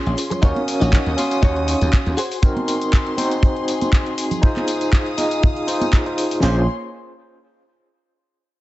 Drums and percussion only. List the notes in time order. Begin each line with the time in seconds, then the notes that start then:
0.06 closed hi-hat
0.17 open hi-hat, tambourine, maracas
0.31 closed hi-hat, tambourine, low conga, maracas
0.42 kick, closed hi-hat, tambourine, maracas
0.56 closed hi-hat, high conga
0.68 open hi-hat, tambourine, maracas
0.81 closed hi-hat, tambourine, maracas
0.93 kick, clap, closed hi-hat, tambourine, maracas
1.06 closed hi-hat
1.18 open hi-hat, tambourine, high conga, maracas
1.31 closed hi-hat, tambourine, maracas
1.43 kick, closed hi-hat, tambourine, maracas
1.56 closed hi-hat
1.68 open hi-hat, tambourine, maracas
1.81 closed hi-hat, tambourine, high conga, maracas
1.93 kick, clap, closed hi-hat, tambourine, maracas
2.06 closed hi-hat
2.17 open hi-hat, tambourine, maracas
2.31 open hi-hat, tambourine, maracas
2.42 kick, closed hi-hat, tambourine, maracas
2.56 closed hi-hat, high conga
2.68 open hi-hat, tambourine, maracas
2.82 closed hi-hat, tambourine, maracas
2.93 kick, clap, closed hi-hat, tambourine, maracas
3.07 closed hi-hat
3.18 open hi-hat, tambourine, high conga, maracas
3.31 closed hi-hat, tambourine, maracas
3.43 kick, closed hi-hat, tambourine, maracas
3.56 closed hi-hat
3.68 open hi-hat, tambourine, maracas
3.81 closed hi-hat, tambourine, high conga, maracas
3.93 kick, clap, closed hi-hat, tambourine, maracas
4.06 closed hi-hat
4.18 open hi-hat, tambourine, maracas
4.31 closed hi-hat, tambourine, low conga, maracas
4.43 kick, closed hi-hat, tambourine, maracas
4.56 clap, closed hi-hat, high conga
4.67 open hi-hat, tambourine, maracas
4.81 closed hi-hat, tambourine, maracas
4.93 kick, clap, closed hi-hat, tambourine, maracas
5.06 closed hi-hat
5.18 open hi-hat, tambourine, high conga, maracas
5.31 closed hi-hat, tambourine, maracas
5.43 kick, closed hi-hat, tambourine, maracas
5.56 closed hi-hat, maracas
5.68 open hi-hat, tambourine, maracas
5.81 closed hi-hat, tambourine, high conga, maracas
5.93 kick, clap, closed hi-hat, tambourine, maracas
6.06 closed hi-hat
6.18 open hi-hat, tambourine, maracas
6.31 open hi-hat, tambourine, maracas
6.43 snare, ride bell